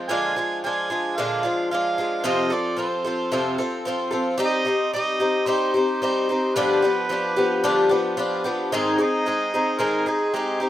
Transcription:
0.08 A#2 D3 F3 G#3 D4 F4 G#5
0.36 F3 G#3 D4 F4
0.64 F3 G#3 D4 F4 G#5
0.90 F3 G#3 D4 F4
1.17 A#2 D3 F3 G#3 D4 F4 F5
1.43 F3 G#3 D4 F4
1.71 F3 G#3 D4 F4 F5
1.98 F3 G#3 D4 F4
2.24 F2 C3 F3 C4 F4 A4 D#5
2.50 F3 C4 F4 A4 D5
2.76 F3 C4 F4 A4 C5
3.04 F3 C4 F4 A4
3.32 F2 C3 F3 C4 F4 A4
3.58 F3 C4 F4 A4
3.85 F3 C4 F4 A4
4.11 F3 C4 F4 A4
4.38 G3 C4 D#4 G4
4.45 D#5
4.65 C4 D#4 G4
4.93 G3 C4 D#4 G4 D#5
5.20 C4 D#4 G4
5.46 G3 C4 D#4 G4 C5
5.74 C4 D#4 G4 C5
6.02 G3 C4 D#4 G4 C5
6.29 C4 D#4 G4
6.55 G2 D3 F3 B3 D4 G4 B4
6.82 F3 B3 D4 G4
7.09 F3 B3 D4 G4
7.36 F3 B3 D4 G4
7.64 G2 D3 F3 B3 D4 G4
7.89 F3 B3 D4 G4
8.17 F3 B3 D4 G4
8.44 F3 B3 D4 G4
8.72 G#2 D#3 G#3 C4 D#4 G#4
8.98 G#3 C4 D#4 G#4 D#5
9.26 G#3 C4 D#4 G#4
9.54 G#3 C4 D#4 G#4
9.79 G#2 D#3 G#3 C4 D#4 G#4 A#4
10.06 G#3 C4 D#4 G#4
10.34 G#3 C4 D#4 G4 G#4
10.60 C4 D#4 G4

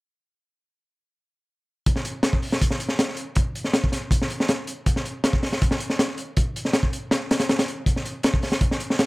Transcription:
1.86 kick, closed hi-hat
1.96 snare
2.05 closed hi-hat
2.23 snare, closed hi-hat
2.33 kick
2.42 open hi-hat
2.52 snare
2.61 kick, closed hi-hat
2.71 snare
2.80 closed hi-hat
2.89 snare
2.99 snare, closed hi-hat
3.09 snare
3.17 closed hi-hat
3.35 kick, closed hi-hat
3.55 closed hi-hat
3.64 snare
3.73 snare, closed hi-hat
3.84 kick
3.92 snare, closed hi-hat
4.11 kick, closed hi-hat
4.22 snare
4.30 closed hi-hat
4.40 snare
4.48 snare, closed hi-hat
4.67 closed hi-hat
4.86 kick, closed hi-hat
4.96 snare
5.05 closed hi-hat
5.24 snare, closed hi-hat
5.33 kick
5.43 snare, open hi-hat
5.53 snare
5.62 kick, closed hi-hat
5.71 snare
5.80 closed hi-hat
5.90 snare
5.99 snare, closed hi-hat
6.08 snare
6.18 closed hi-hat
6.37 kick, closed hi-hat
6.56 closed hi-hat
6.65 snare
6.73 snare, closed hi-hat
6.83 kick
6.93 closed hi-hat
7.11 snare, closed hi-hat
7.31 snare, closed hi-hat
7.39 snare, closed hi-hat
7.49 snare, closed hi-hat
7.59 snare, closed hi-hat
7.68 closed hi-hat
7.86 kick, closed hi-hat
7.96 snare
8.05 closed hi-hat
8.23 snare, closed hi-hat
8.34 kick
8.43 snare, open hi-hat
8.52 snare
8.61 kick, closed hi-hat
8.71 snare
8.80 closed hi-hat
8.90 snare
8.99 snare, closed hi-hat

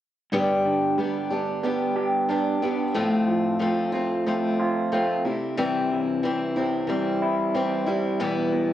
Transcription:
0.32 G2 D3 G3 B3 D4 G4
0.65 D3
0.98 G3 B3 D4 G4
1.30 G3 B3 D4 G4
1.63 G3 B3 D4 G4
1.96 G4
2.29 G3 B3 D4 G4
2.62 G3 B3 D4 G4
2.95 A2 F3 A3 C4 F4
3.28 F3
3.59 F3 A3 C4 F4
3.92 A3 C4 F4
4.27 F3 A3 C4 F4
4.60 F4
4.92 F3 A3 C4 F4
5.25 C3 G3 C4 E4
5.57 C3 E3 G3 C4 E4
5.91 E3
6.23 E3 G3 C4 E4
6.56 G3 C4 E4
6.87 E3 G3 C4 E4
7.22 E4
7.54 E3 G3 C4 E4
7.86 G3 C4 E4
8.20 E2 B2 E3 G3 B3 E4
8.52 B2

